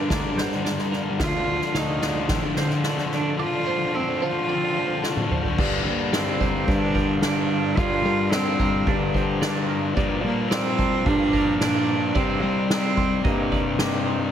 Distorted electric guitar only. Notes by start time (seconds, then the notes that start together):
0.01 G2 D3
0.10 G2 D3
0.16 G2 D3
0.24 G2 D3
0.32 G2 D3
0.41 G2 D3
0.48 G2 D3
0.55 G2 D3
0.63 G2 D3
0.72 G2 D3
0.79 G2 D3
0.87 G2 D3
0.94 G2 D3
1.02 G2 D3
1.10 G2 D3
1.19 D3 F3
1.26 D3 F3
1.35 D3 F3
1.41 D3 F3
1.50 D3 F3
1.58 D3 F3
1.65 D3 F3
1.74 D3 F3
1.81 D3 F3
1.89 D3 F3
1.97 D3 F3
2.05 D3 F3
2.13 D3 F3
2.20 D3 F3
2.28 D3 F3
2.36 D3 F3
2.44 D3 F3
2.51 D3 F3
2.59 D3 F3
2.68 D3 F3
2.75 D3 F3
2.83 D3 F3
2.91 D3 F3
2.98 D3 F3
3.07 D3 F3
3.14 D3 F3
3.22 D3 F3
3.30 D3 F3
3.39 D3 F3
3.46 D3 F3
3.54 D3 F3
3.62 D3 F3
3.70 D3 F3
3.78 D3 F3
3.86 D3 F3
3.93 D3 F3
4.01 D3 F3
4.09 D3 F3
4.17 D3 F3
4.23 D3 F3
4.33 D3 F3
4.39 D3 F3
4.48 D3 F3
4.56 D3 F3
4.63 D3 F3
4.71 D3 F3
4.79 D3 F3
4.86 D3 F3
4.95 D3 F3
5.03 D3 F3
5.11 D3 F3
5.19 D3 F3
5.26 D3 F3
5.34 D3 F3
5.42 D3 F3
5.50 D3 F3
5.57 G2 D3 G3
7.77 G2 D3 G3
9.96 A#2 F3 A#3
12.14 C3 G3 C4